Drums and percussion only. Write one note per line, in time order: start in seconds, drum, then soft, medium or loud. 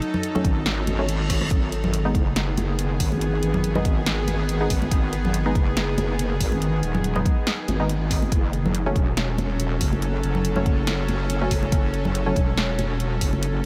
0.02 closed hi-hat medium
0.14 low conga medium
0.23 closed hi-hat medium
0.35 high conga medium
0.35 low conga medium
0.44 kick loud
0.44 closed hi-hat medium
0.66 snare loud
0.66 closed hi-hat medium
0.87 closed hi-hat medium
0.87 high conga medium
1.09 closed hi-hat medium
1.30 kick medium
1.30 cross-stick medium
1.30 open hi-hat loud
1.41 cross-stick medium
1.41 high conga medium
1.51 kick loud
1.51 closed hi-hat medium
1.72 closed hi-hat medium
1.84 low conga medium
1.94 closed hi-hat medium
2.15 kick loud
2.15 closed hi-hat medium
2.36 snare loud
2.36 closed hi-hat medium
2.57 closed hi-hat medium
2.57 high conga loud
2.79 closed hi-hat medium
3.00 kick medium
3.00 open hi-hat loud
3.12 high conga medium
3.21 closed hi-hat medium
3.43 closed hi-hat medium
3.54 low conga medium
3.64 closed hi-hat medium
3.75 low conga medium
3.85 kick loud
3.85 closed hi-hat medium
4.06 snare loud
4.06 closed hi-hat medium
4.28 closed hi-hat medium
4.28 high conga medium
4.49 closed hi-hat medium
4.70 kick medium
4.70 open hi-hat medium
4.82 high conga medium
4.91 kick loud
4.91 closed hi-hat medium
5.13 closed hi-hat medium
5.25 low conga medium
5.34 closed hi-hat medium
5.55 kick loud
5.55 closed hi-hat medium
5.77 snare loud
5.77 closed hi-hat medium
5.98 closed hi-hat medium
5.98 high conga loud
6.19 closed hi-hat medium
6.40 kick medium
6.40 open hi-hat medium
6.52 high conga medium
6.62 closed hi-hat medium
6.83 closed hi-hat medium
6.95 low conga medium
7.04 closed hi-hat medium
7.16 low conga medium
7.25 kick loud
7.25 closed hi-hat medium
7.47 snare loud
7.47 closed hi-hat medium
7.68 closed hi-hat medium
7.68 high conga medium
7.89 closed hi-hat medium
8.11 kick medium
8.11 open hi-hat medium
8.22 high conga medium
8.32 kick loud
8.32 closed hi-hat medium
8.53 closed hi-hat soft
8.66 low conga medium
8.75 closed hi-hat medium
8.96 kick loud
8.96 closed hi-hat medium
9.17 snare loud
9.17 closed hi-hat medium
9.38 closed hi-hat medium
9.38 high conga loud
9.60 closed hi-hat medium
9.81 kick medium
9.81 open hi-hat medium
9.93 high conga medium
10.02 closed hi-hat medium
10.23 closed hi-hat soft
10.35 low conga medium
10.45 closed hi-hat medium
10.56 low conga medium
10.66 kick loud
10.66 closed hi-hat medium
10.87 snare loud
10.87 closed hi-hat medium
11.08 closed hi-hat medium
11.08 high conga medium
11.30 closed hi-hat medium
11.51 kick medium
11.51 open hi-hat medium
11.62 high conga medium
11.72 kick loud
11.72 closed hi-hat medium
11.94 closed hi-hat medium
12.05 low conga medium
12.15 closed hi-hat medium
12.36 kick loud
12.36 closed hi-hat medium
12.57 snare loud
12.57 closed hi-hat medium
12.79 closed hi-hat medium
12.79 high conga medium
13.00 closed hi-hat medium
13.21 kick medium
13.21 open hi-hat medium
13.33 high conga medium
13.43 closed hi-hat medium